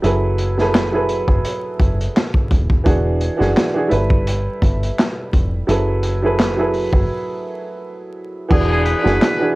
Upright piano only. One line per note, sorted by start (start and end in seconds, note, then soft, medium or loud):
0.02 0.53 F#3 medium
0.02 0.54 E4 medium
0.02 0.54 G#4 medium
0.02 0.55 A4 medium
0.02 0.55 B4 medium
0.58 0.90 F#3 medium
0.58 0.91 E4 medium
0.58 0.91 G#4 medium
0.58 0.92 A4 medium
0.58 0.92 B4 loud
0.92 2.23 F#3 medium
0.92 2.23 E4 medium
0.92 2.24 G#4 medium
0.92 2.24 A4 medium
0.92 2.25 B4 medium
2.84 3.35 E3 medium
2.84 3.36 D4 medium
2.84 3.36 F#4 medium
2.84 3.37 G#4 medium
3.37 3.71 E3 medium
3.37 3.72 D4 medium
3.37 3.72 F#4 medium
3.37 3.73 G#4 loud
3.74 3.91 E3 medium
3.74 3.91 D4 medium
3.74 3.92 F#4 medium
3.74 3.93 G#4 medium
3.88 5.22 G3 medium
3.88 5.23 E4 medium
3.88 5.23 A4 medium
3.88 5.24 B4 loud
5.67 6.18 F#3 medium
5.67 6.19 E4 medium
5.67 6.19 G#4 medium
5.67 6.19 A4 medium
5.67 6.20 B4 medium
6.22 6.55 F#3 medium
6.22 6.56 E4 medium
6.22 6.56 G#4 medium
6.22 6.56 A4 medium
6.22 6.57 B4 loud
6.57 7.88 F#3 medium
6.57 7.88 E4 medium
6.57 7.89 G#4 medium
6.57 7.89 A4 medium
6.57 7.90 B4 medium
8.48 9.00 E3 medium
8.48 9.01 D4 medium
8.48 9.01 F#4 medium
8.48 9.02 G#4 medium
9.02 9.36 E3 medium
9.02 9.37 D4 medium
9.02 9.37 F#4 medium
9.02 9.38 G#4 loud
9.39 9.55 E3 medium
9.39 9.55 D4 medium
9.39 9.55 F#4 medium
9.39 9.55 G#4 medium